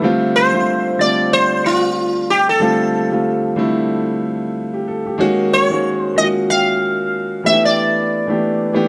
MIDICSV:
0, 0, Header, 1, 3, 480
1, 0, Start_track
1, 0, Tempo, 645161
1, 13, Time_signature, 4, 2, 24, 8
1, 6607, End_track
2, 0, Start_track
2, 0, Title_t, "Sitar"
2, 0, Program_c, 0, 104
2, 266, Note_on_c, 0, 72, 103
2, 751, Note_on_c, 0, 74, 94
2, 754, Note_off_c, 0, 72, 0
2, 989, Note_off_c, 0, 74, 0
2, 991, Note_on_c, 0, 72, 115
2, 1229, Note_off_c, 0, 72, 0
2, 1234, Note_on_c, 0, 65, 85
2, 1714, Note_on_c, 0, 67, 88
2, 1718, Note_off_c, 0, 65, 0
2, 1846, Note_off_c, 0, 67, 0
2, 1854, Note_on_c, 0, 69, 75
2, 2533, Note_off_c, 0, 69, 0
2, 4117, Note_on_c, 0, 73, 97
2, 4460, Note_off_c, 0, 73, 0
2, 4460, Note_on_c, 0, 72, 97
2, 4596, Note_on_c, 0, 75, 99
2, 4600, Note_off_c, 0, 72, 0
2, 4658, Note_off_c, 0, 75, 0
2, 4837, Note_on_c, 0, 77, 109
2, 5548, Note_off_c, 0, 77, 0
2, 5551, Note_on_c, 0, 76, 94
2, 5684, Note_off_c, 0, 76, 0
2, 5694, Note_on_c, 0, 74, 73
2, 6607, Note_off_c, 0, 74, 0
2, 6607, End_track
3, 0, Start_track
3, 0, Title_t, "Grand piano"
3, 0, Program_c, 1, 0
3, 0, Control_c, 1, 64, 127
3, 13, Note_on_c, 1, 50, 101
3, 20, Note_on_c, 1, 55, 91
3, 22, Control_c, 1, 64, 0
3, 24, Note_on_c, 1, 57, 101
3, 28, Note_on_c, 1, 60, 103
3, 33, Note_on_c, 1, 65, 117
3, 152, Control_c, 1, 64, 127
3, 334, Note_off_c, 1, 50, 0
3, 338, Note_off_c, 1, 55, 0
3, 340, Note_off_c, 1, 57, 0
3, 342, Note_off_c, 1, 60, 0
3, 344, Note_off_c, 1, 65, 0
3, 390, Note_on_c, 1, 50, 70
3, 396, Note_on_c, 1, 55, 69
3, 400, Note_on_c, 1, 57, 71
3, 407, Note_on_c, 1, 60, 68
3, 411, Note_on_c, 1, 65, 83
3, 691, Note_off_c, 1, 50, 0
3, 693, Note_off_c, 1, 55, 0
3, 696, Note_off_c, 1, 57, 0
3, 699, Note_off_c, 1, 60, 0
3, 701, Note_off_c, 1, 65, 0
3, 732, Note_on_c, 1, 50, 78
3, 736, Note_on_c, 1, 55, 67
3, 742, Note_on_c, 1, 57, 65
3, 747, Note_on_c, 1, 60, 69
3, 752, Note_on_c, 1, 65, 83
3, 1576, Note_off_c, 1, 50, 0
3, 1579, Note_off_c, 1, 55, 0
3, 1581, Note_off_c, 1, 57, 0
3, 1584, Note_off_c, 1, 60, 0
3, 1586, Note_off_c, 1, 65, 0
3, 1930, Note_on_c, 1, 50, 87
3, 1935, Note_on_c, 1, 55, 90
3, 1939, Note_on_c, 1, 57, 82
3, 1946, Note_on_c, 1, 60, 85
3, 1950, Note_on_c, 1, 65, 98
3, 2253, Note_off_c, 1, 50, 0
3, 2255, Note_off_c, 1, 55, 0
3, 2257, Note_off_c, 1, 57, 0
3, 2261, Note_off_c, 1, 60, 0
3, 2263, Note_off_c, 1, 65, 0
3, 2311, Note_on_c, 1, 50, 70
3, 2316, Note_on_c, 1, 55, 67
3, 2321, Note_on_c, 1, 57, 66
3, 2325, Note_on_c, 1, 60, 66
3, 2331, Note_on_c, 1, 65, 80
3, 2611, Note_off_c, 1, 50, 0
3, 2613, Note_off_c, 1, 55, 0
3, 2616, Note_off_c, 1, 57, 0
3, 2618, Note_off_c, 1, 60, 0
3, 2621, Note_off_c, 1, 65, 0
3, 2648, Note_on_c, 1, 50, 96
3, 2652, Note_on_c, 1, 55, 75
3, 2659, Note_on_c, 1, 57, 79
3, 2663, Note_on_c, 1, 60, 75
3, 2668, Note_on_c, 1, 64, 101
3, 3494, Note_off_c, 1, 50, 0
3, 3497, Note_off_c, 1, 55, 0
3, 3500, Note_off_c, 1, 57, 0
3, 3502, Note_off_c, 1, 60, 0
3, 3505, Note_off_c, 1, 64, 0
3, 3522, Note_on_c, 1, 67, 68
3, 3614, Note_off_c, 1, 67, 0
3, 3628, Note_on_c, 1, 69, 74
3, 3753, Note_off_c, 1, 69, 0
3, 3764, Note_on_c, 1, 67, 66
3, 3852, Note_on_c, 1, 51, 112
3, 3858, Note_on_c, 1, 56, 98
3, 3862, Control_c, 1, 64, 0
3, 3863, Note_on_c, 1, 58, 104
3, 3868, Note_on_c, 1, 61, 102
3, 3873, Note_on_c, 1, 66, 127
3, 3986, Note_off_c, 1, 67, 0
3, 3999, Control_c, 1, 64, 127
3, 4174, Note_off_c, 1, 51, 0
3, 4177, Note_off_c, 1, 56, 0
3, 4179, Note_off_c, 1, 58, 0
3, 4182, Note_off_c, 1, 61, 0
3, 4184, Note_off_c, 1, 66, 0
3, 4233, Note_on_c, 1, 51, 70
3, 4239, Note_on_c, 1, 56, 66
3, 4244, Note_on_c, 1, 58, 70
3, 4248, Note_on_c, 1, 61, 72
3, 4255, Note_on_c, 1, 66, 88
3, 4532, Note_off_c, 1, 51, 0
3, 4535, Note_off_c, 1, 56, 0
3, 4538, Note_off_c, 1, 58, 0
3, 4540, Note_off_c, 1, 61, 0
3, 4543, Note_off_c, 1, 66, 0
3, 4573, Note_on_c, 1, 51, 79
3, 4578, Note_on_c, 1, 56, 69
3, 4585, Note_on_c, 1, 58, 65
3, 4589, Note_on_c, 1, 61, 74
3, 4594, Note_on_c, 1, 65, 68
3, 4640, Note_off_c, 1, 65, 0
3, 4644, Note_on_c, 1, 66, 88
3, 5417, Note_off_c, 1, 51, 0
3, 5419, Note_off_c, 1, 56, 0
3, 5423, Note_off_c, 1, 58, 0
3, 5425, Note_off_c, 1, 61, 0
3, 5452, Note_off_c, 1, 66, 0
3, 5532, Note_on_c, 1, 52, 81
3, 5538, Note_on_c, 1, 57, 66
3, 5542, Control_c, 1, 64, 0
3, 5543, Note_on_c, 1, 59, 63
3, 5548, Note_on_c, 1, 61, 57
3, 5553, Note_on_c, 1, 67, 81
3, 5595, Note_on_c, 1, 62, 70
3, 5596, Note_off_c, 1, 61, 0
3, 5678, Control_c, 1, 64, 127
3, 6056, Note_off_c, 1, 52, 0
3, 6059, Note_off_c, 1, 57, 0
3, 6061, Note_off_c, 1, 59, 0
3, 6066, Note_off_c, 1, 67, 0
3, 6087, Note_off_c, 1, 62, 0
3, 6154, Note_on_c, 1, 52, 77
3, 6160, Note_on_c, 1, 57, 71
3, 6166, Note_on_c, 1, 59, 63
3, 6171, Note_on_c, 1, 62, 68
3, 6176, Note_on_c, 1, 67, 79
3, 6452, Note_off_c, 1, 52, 0
3, 6456, Note_off_c, 1, 57, 0
3, 6458, Note_off_c, 1, 59, 0
3, 6461, Note_off_c, 1, 62, 0
3, 6463, Note_off_c, 1, 67, 0
3, 6496, Note_on_c, 1, 52, 91
3, 6501, Note_on_c, 1, 57, 78
3, 6506, Note_on_c, 1, 59, 89
3, 6511, Note_on_c, 1, 62, 90
3, 6516, Note_on_c, 1, 67, 109
3, 6607, Note_off_c, 1, 52, 0
3, 6607, Note_off_c, 1, 57, 0
3, 6607, Note_off_c, 1, 59, 0
3, 6607, Note_off_c, 1, 62, 0
3, 6607, Note_off_c, 1, 67, 0
3, 6607, End_track
0, 0, End_of_file